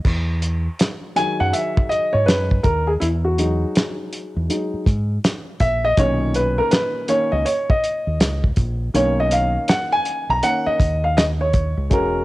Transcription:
0.05 fingered electric bass E2, kick, crash
0.42 closed hi-hat
0.79 snare, closed hi-hat
1.16 grand piano D#3 F#3 G#3 G#5, closed hi-hat
1.40 fingered electric bass F#2, grand piano F#5
1.53 grand piano E5, closed hi-hat
1.77 kick
1.89 grand piano D#5, closed hi-hat
2.13 fingered electric bass G#2, grand piano C#5
2.26 fingered electric bass F#2, grand piano B4, snare, closed hi-hat
2.51 kick
2.63 fingered electric bass D#2, grand piano A#4, kick, closed hi-hat
2.87 grand piano G#4
3.00 fingered electric bass E2, grand piano E4, closed hi-hat
3.24 grand piano F#4
3.38 grand piano F#3 G#3 D#4, closed hi-hat
3.75 snare, closed hi-hat
4.13 closed hi-hat
4.36 fingered electric bass E2
4.49 grand piano F#3 G#3 D#4, closed hi-hat
4.74 muted fingered electric bass stroke
4.86 fingered electric bass G#2, kick, closed hi-hat
5.24 snare, closed hi-hat
5.60 fingered electric bass A#1, grand piano E5, kick, closed hi-hat
5.85 grand piano D#5
5.97 fingered electric bass B1, grand piano A#2 D#3 C#4 C#5, kick, closed hi-hat
6.34 grand piano B4, closed hi-hat
6.58 grand piano A#4
6.71 grand piano B4, snare, closed hi-hat
7.08 grand piano D#3 A#3 C#4 C#5, closed hi-hat
7.32 fingered electric bass C#2, grand piano D#5
7.45 grand piano C#5, closed hi-hat
7.70 grand piano D#5, kick
7.84 closed hi-hat
8.07 fingered electric bass D#2
8.20 fingered electric bass C#2, snare, closed hi-hat
8.44 kick
8.56 fingered electric bass A#1, kick, closed hi-hat
8.94 fingered electric bass B1, grand piano D#3 A#3 C#4 C#5, closed hi-hat
9.20 grand piano D#5
9.31 grand piano F5, closed hi-hat
9.68 grand piano F#5, snare, closed hi-hat
9.92 grand piano G#5
10.05 closed hi-hat
10.29 fingered electric bass B1, grand piano A#5
10.43 grand piano D#3 A#3 C#4 F#5, closed hi-hat
10.66 grand piano D#5, muted fingered electric bass stroke
10.79 fingered electric bass D#2, kick, closed hi-hat
11.04 grand piano F5
11.17 grand piano D#5, snare, closed hi-hat
11.41 grand piano C#5
11.53 kick, closed hi-hat
11.77 fingered electric bass C#2
11.90 fingered electric bass E1, grand piano G#3 C#4 F#4 A#4, kick, closed hi-hat

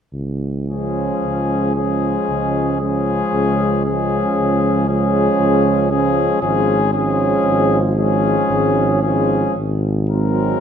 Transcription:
0.13 tuba C#2
0.68 trombone F3, trombone section G#3, french horn section C#4, cornet G#4
1.23 tuba C#2
1.76 trombone F3, trombone section G#3, french horn section C#4, cornet G#4
2.29 tuba C#2
2.80 trombone F3, trombone section G#3, french horn section C#4, cornet G#4
3.33 tuba C#2
3.85 trombone F3, trombone section G#3, french horn section C#4, cornet G#4
4.37 tuba C#2
4.88 trombone F3, trombone section G#3, french horn section C#4, cornet G#4
5.40 tuba C#2
5.91 trombone F3, trombone section G#3, french horn section C#4, cornet G#4
6.42 tuba G#1, trombone F3, trombone section G#3, french horn section C#4, cornet G#4
6.93 trombone F3, trombone section G#3, french horn section C#4, cornet G#4
7.44 tuba G#1
7.96 trombone F3, trombone section G#3, french horn section C#4, cornet G#4
8.50 tuba G#1
9.02 trombone F3, trombone section G#3, french horn section C#4, cornet G#4
9.56 tuba G#1
10.10 trombone F#3, trombone section G#3, french horn section C4, cornet A#4

